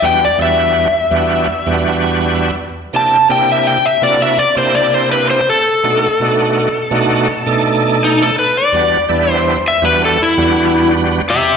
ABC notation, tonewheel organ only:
X:1
M:4/4
L:1/16
Q:1/4=83
K:Em
V:1 name="Tonewheel organ"
[E,,G,B,DF] z [E,,G,B,DF]3 z [E,,G,B,DF]2 z [E,,G,B,DF]4- [E,,G,B,DF] z2 | [C,_B,DEG] z [C,B,DEG]3 z [C,B,DEF]2 z [C,B,DEG]4- [C,B,DEG] z2 | [B,,A,D^DF] z [B,,A,=D^DF]3 z [B,,A,=D^DF]2 z [B,,A,=D^DA]4- [B,,A,=D^DA] z2 | [E,,G,B,DF] z [E,,G,B,DE]3 z [E,,G,B,DF]2 z [E,,G,B,DF]4- [E,,G,B,DF] z2 |]